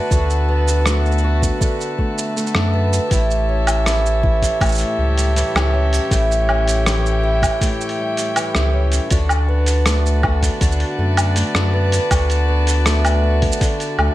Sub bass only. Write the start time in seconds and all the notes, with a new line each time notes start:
0.11 D2
2.55 F#2
3.11 A1
4.61 A1
4.98 C#2
5.55 C#2
6.11 A1
8.55 C#2
9.11 D2
10.61 D2
10.98 F#2
11.54 F#2
12.11 D2
13.98 D2